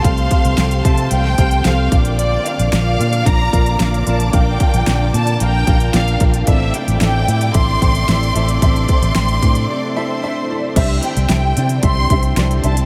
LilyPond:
<<
  \new Staff \with { instrumentName = "Violin section" } { \time 4/4 \key c \mixolydian \tempo 4 = 112 f''4. a''8 g''4 f''8. r16 | d''8 f''8 f''4 bes''4 r8 a''8 | g''4. a''8 g''4 f''8. r16 | e''8 g''8 g''4 c'''2 |
c'''2. r4 | e''8 g''8 g''4 c'''4 r8 a''8 | }
  \new Staff \with { instrumentName = "Violin section" } { \time 4/4 \key c \mixolydian <c'' c'''>2.~ <c'' c'''>8 <d'' d'''>8~ | <d'' d'''>1~ | <d'' d'''>2 <bes' bes''>4. r8 | <d'' d'''>1~ |
<d'' d'''>2~ <d'' d'''>8 <c'' c'''>4. | r1 | }
  \new Staff \with { instrumentName = "Upright piano" } { \time 4/4 \key c \mixolydian <c' g' a' f''>8 <c' g' a' f''>8 <c' g' a' g''>8 <c' g' a' e''>8 <c' g' a' f''>8 <c' g' a' f''>8 <c' g' a' f''>8 <d' f' bes' f''>8~ | <d' f' bes' f''>8 <d' f' bes' f''>8 <d' f' bes' d''>8 <d' f' bes' d''>8 <d' f' bes' f''>8 <d' f' bes' f''>8 <d' f' bes' f''>8 <d' f' bes' f''>8 | <d' f' bes' f''>8 <d' f' bes' f''>8 <d' f' bes' d''>8 <d' f' bes' d''>8 <d' f' bes' f''>8 <d' f' bes' f''>8 <d' f' bes' d''>8 <d' f' bes' f''>8 | <c' e' a' e''>8 <c' e' a' e''>8 <c' e' a' e''>8 <c' e' a' e''>8 <c' e' a' e''>8 <c' e' a' g''>8 <c' e' a' e''>8 <c' e' a' e''>8 |
<c' e' a' e''>8 <c' e' a' c''>8 <c' e' a' g''>8 <c' e' a' g''>8 <c' e' a' d''>8 <c' e' a' e''>8 <c' e' a' e''>8 <c' e' a' d''>8 | <d' g' c'' e''>8 <d' g' c'' e''>8 <d' g' c'' g''>8 <d' g' c'' d''>8 <d' g' c'' e''>8 <d' g' c'' e''>8 <d' g' c'' d''>8 <d' g' c'' e''>8 | }
  \new Staff \with { instrumentName = "Upright piano" } { \clef bass \time 4/4 \key c \mixolydian c4 r2. | r1 | r1 | r1 |
r1 | g,4. r2 r8 | }
  \new Staff \with { instrumentName = "Analog synth pad" } { \time 4/4 \key c \mixolydian << { g'2.~ g'8 f'8~ | f'1~ | f'1 | e'1 |
d'1 | e'1 | } \\ { <f a>2.~ <f a>8 <d bes>8~ | <d bes>1~ | <d bes>1 | <c a>1~ |
<c a>1 | <d c'>1 | } >> }
  \new Staff \with { instrumentName = "Fingered electric bass" } { \clef bass \time 4/4 \key c \mixolydian c,8 r16 c,16 c,8 c8 c,8 c,8 c,8 bes,,8~ | bes,,8 r16 bes,,16 bes,,8 bes,8 bes,,8 bes,,8 bes,,8 bes,,8 | bes,,8 r16 bes,,16 bes,,8 bes,8 bes,,8 bes,,8 bes,,8 bes,,8 | a,,8 r16 a,,16 a,,8 a,8 a,,8 a,,8 a,,8 a,,8 |
a,,8 r16 a,,16 a,,8 a,8 r2 | c,8 r16 c,16 c,8 c8 c,8 c,8 c,8 c,8 | }
  \new DrumStaff \with { instrumentName = "Drums" } \drummode { \time 4/4 <hh bd>16 hh16 <hh bd>16 hh16 <hh sn>16 hh16 <hh bd>16 hh16 hh16 sn16 <hh bd>16 hh16 <hh sn>8 <hh bd>16 hh16 | hh8 hh16 hh16 <hh sn>8 hh16 hh16 <hh bd>8 <hh bd>16 hh16 <hh sn>16 hh16 hh16 hh16 | <hh bd>8 <hh bd>16 hh16 <hh sn>8 hh16 hh16 hh8 <hh bd>16 hh16 <hh sn>16 hh16 <hh bd>16 hh16 | <hh bd>8 hh16 hh16 <hh sn>8 hh16 hh16 <hh bd>8 <hh bd>16 hh16 <hh sn>16 hh16 hh16 hh16 |
<hh bd>16 hh16 <hh bd>16 hh16 <hh sn>16 hh16 <hh bd>16 hh16 r4 r4 | <cymc hh bd>8 hh16 hh16 <hh sn>8 hh16 hh16 <hh bd>8 <hh bd>16 hh16 <hh sn>16 hh16 hh16 hh16 | }
>>